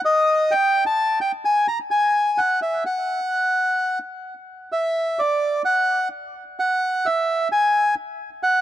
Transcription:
0.05 0.53 D#5 medium
0.51 0.84 G5 medium
0.86 1.19 A5 medium
1.21 1.32 G5 medium
1.45 1.67 G#5 medium
1.68 1.79 A#5 medium
1.91 2.39 G#5 medium
2.38 2.60 F#5 medium
2.62 2.84 E5 medium
2.86 3.99 F#5 medium
4.72 5.20 E5 medium
5.19 5.62 D5 medium
5.65 6.08 F#5 medium
6.60 7.07 F#5 medium
7.06 7.48 E5 medium
7.52 7.95 G#5 medium
8.43 8.61 F#5 medium

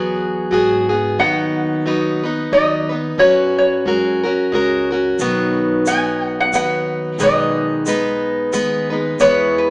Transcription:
0.00 0.48 E2 medium
0.00 0.50 F#3 medium
0.00 0.52 B3 medium
0.00 0.52 F#4 medium
0.00 0.52 G#4 medium
0.00 0.19 B4 medium
0.51 1.15 G#2 medium
0.51 0.89 F#3 medium
0.51 0.90 B3 medium
0.51 0.89 F#4 medium
0.51 0.88 G#4 medium
0.89 1.19 B3 soft
0.89 1.19 F#4 soft
0.89 1.19 G#4 soft
1.18 2.48 D#2 medium
1.18 1.86 D#3 medium
1.18 1.85 F#3 medium
1.18 1.85 B3 medium
1.18 1.86 D#4 medium
1.18 1.87 B4 medium
1.18 2.49 F#5 loud
1.86 2.23 F#3 soft
1.86 2.24 B3 medium
1.86 2.24 D#4 medium
1.86 2.22 B4 medium
2.24 2.52 B3 soft
2.24 2.53 D#4 soft
2.24 2.52 B4 medium
2.52 3.15 D#2 medium
2.52 2.90 F#3 medium
2.52 2.90 B3 medium
2.52 2.89 D#4 medium
2.52 2.88 B4 medium
2.52 3.21 D#5 medium
2.89 3.18 B3 soft
2.89 3.19 D#4 soft
2.89 3.19 B4 soft
3.18 3.82 F#2 medium
3.18 3.85 F#3 medium
3.18 3.86 C#4 medium
3.18 3.87 F#4 medium
3.18 3.86 B4 medium
3.18 3.57 C#5 medium
3.58 4.20 C#5 medium
3.85 4.49 F#2 medium
3.85 4.23 G#3 medium
3.85 4.24 C#4 medium
3.85 4.24 F#4 medium
3.85 4.22 A#4 medium
4.24 4.52 C#4 soft
4.24 4.53 F#4 soft
4.24 4.52 A#4 soft
4.52 5.16 C#2 medium
4.52 4.90 G#3 medium
4.52 4.91 C#4 medium
4.52 4.91 F#4 medium
4.52 4.89 A#4 medium
4.91 5.21 C#4 soft
4.91 5.20 F#4 soft
4.91 5.19 A#4 soft
5.19 6.48 B1 medium
5.19 5.86 B2 medium
5.19 5.87 D#3 medium
5.19 5.86 F#3 medium
5.19 5.88 B3 medium
5.19 5.88 D#4 medium
5.19 5.89 B4 medium
5.19 shaker medium
5.86 6.52 F#3 medium
5.86 6.54 B3 medium
5.86 6.54 D#4 medium
5.86 6.55 B4 medium
5.86 6.35 G#5 medium
5.86 shaker medium
6.40 6.54 F#5 medium
6.53 7.16 D#2 medium
6.53 7.19 F#3 medium
6.53 7.20 B3 soft
6.53 7.19 D#4 medium
6.53 7.21 B4 medium
6.53 7.23 F#5 medium
6.53 shaker medium
7.18 8.49 B1 medium
7.18 7.86 B2 medium
7.18 7.86 D#3 medium
7.18 7.86 G#3 medium
7.18 7.87 B3 medium
7.18 7.87 D#4 medium
7.18 7.88 B4 medium
7.18 shaker medium
7.23 8.51 D#5 medium
7.86 8.51 G#3 medium
7.86 8.53 B3 medium
7.86 8.53 D#4 medium
7.86 8.54 B4 medium
7.86 shaker medium
8.52 9.17 D#2 medium
8.52 8.91 G#3 medium
8.52 8.91 B3 medium
8.52 8.90 D#4 medium
8.52 8.89 B4 medium
8.52 shaker medium
8.90 9.19 G#3 soft
8.90 9.19 B3 soft
8.90 9.20 D#4 soft
8.90 9.20 B4 soft
9.19 9.70 E2 medium
9.19 9.70 E3 medium
9.19 9.70 G#3 medium
9.19 9.70 B3 medium
9.19 9.70 E4 medium
9.19 9.70 B4 medium
9.19 9.58 C#5 medium
9.19 shaker medium
9.58 9.70 B4 medium

